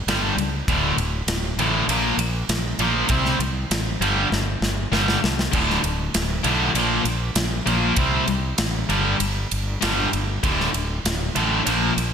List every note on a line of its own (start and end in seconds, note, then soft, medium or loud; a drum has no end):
0.07 0.31 G1 medium
0.07 0.33 G2 medium
0.07 0.33 D3 medium
0.07 0.34 G3 medium
0.07 snare loud
0.07 ride medium
0.37 0.61 C#2 medium
0.37 ride medium
0.68 0.92 D1 medium
0.68 0.93 D2 medium
0.68 0.93 A2 medium
0.68 0.94 D3 medium
0.68 kick loud
0.68 ride medium
0.97 1.22 D1 medium
0.97 ride medium
1.27 1.51 D1 medium
1.27 snare loud
1.27 ride medium
1.57 1.81 A1 medium
1.57 1.84 D2 medium
1.57 1.84 A2 medium
1.57 1.84 D3 medium
1.57 ride medium
1.88 2.12 A#1 medium
1.88 2.14 A#2 medium
1.88 2.14 F3 loud
1.88 2.14 A#3 loud
1.88 ride medium
2.18 2.42 A#1 medium
2.18 ride medium
2.49 2.73 A#1 medium
2.49 snare loud
2.49 ride medium
2.79 3.03 A#1 medium
2.79 3.05 A#2 medium
2.79 3.05 F3 medium
2.79 3.05 A#3 loud
2.79 ride medium
3.09 3.34 C2 medium
3.09 3.35 C3 medium
3.09 3.35 G3 medium
3.09 3.36 C4 medium
3.09 kick loud
3.09 ride medium
3.25 snare soft
3.39 3.64 C2 medium
3.39 ride medium
3.71 3.95 A1 medium
3.71 snare loud
3.71 ride medium
4.00 4.25 G1 medium
4.00 4.26 G2 medium
4.00 4.26 D3 medium
4.00 4.26 G3 medium
4.00 ride medium
4.32 4.56 G1 medium
4.32 snare medium
4.61 4.86 G1 medium
4.61 snare medium
4.92 5.16 G1 medium
4.92 5.17 G2 medium
4.92 5.17 D3 medium
4.92 5.17 G3 loud
4.92 snare medium
5.08 snare medium
5.24 5.47 C2 medium
5.24 snare medium
5.39 snare medium
5.52 5.77 D1 medium
5.52 5.77 D2 medium
5.52 5.78 A2 medium
5.52 5.78 D3 medium
5.52 kick loud
5.52 ride medium
5.52 splash medium
5.70 snare soft
5.84 6.08 D1 medium
5.84 ride medium
6.14 6.39 D1 medium
6.14 snare loud
6.14 ride medium
6.43 6.69 B1 medium
6.43 6.69 D2 medium
6.43 6.69 A2 medium
6.43 6.69 D3 medium
6.43 ride medium
6.74 6.99 A#1 medium
6.74 7.00 A#2 medium
6.74 7.00 F3 loud
6.74 7.00 A#3 loud
6.74 ride medium
7.05 7.29 A#1 medium
7.05 ride medium
7.35 7.60 A#1 medium
7.35 snare loud
7.35 ride medium
7.66 7.91 A#1 medium
7.66 7.91 A#2 loud
7.66 7.92 F3 medium
7.66 7.92 A#3 loud
7.66 ride medium
7.96 8.21 C2 medium
7.96 8.23 C3 medium
7.96 8.23 G3 medium
7.96 8.23 C4 medium
7.96 kick loud
7.96 ride medium
8.28 8.52 C2 medium
8.28 ride medium
8.58 8.83 A1 medium
8.58 snare loud
8.58 ride medium
8.89 9.13 G1 medium
8.89 9.14 G2 medium
8.89 9.14 D3 medium
8.89 9.15 G3 medium
8.89 ride medium
9.20 9.44 G1 medium
9.20 ride medium
9.51 9.76 G1 medium
9.51 ride medium
9.81 10.06 G1 medium
9.81 10.06 G2 medium
9.81 10.06 D3 medium
9.81 10.07 G3 medium
9.81 snare loud
9.81 ride loud
10.13 10.37 G1 medium
10.13 ride medium
10.43 10.67 D1 medium
10.43 10.68 D2 medium
10.43 10.68 A2 medium
10.43 10.68 D3 loud
10.43 kick loud
10.43 ride medium
10.60 snare soft
10.74 10.98 D1 medium
10.74 ride medium
11.05 11.29 D1 medium
11.05 snare loud
11.05 ride loud
11.36 11.60 A1 medium
11.36 11.60 D2 medium
11.36 11.61 A2 medium
11.36 11.61 D3 loud
11.36 ride medium
11.67 11.91 A#1 medium
11.67 11.91 A#2 loud
11.67 11.91 F3 medium
11.67 11.91 A#3 loud
11.67 ride medium
11.97 12.13 A#1 medium
11.97 ride medium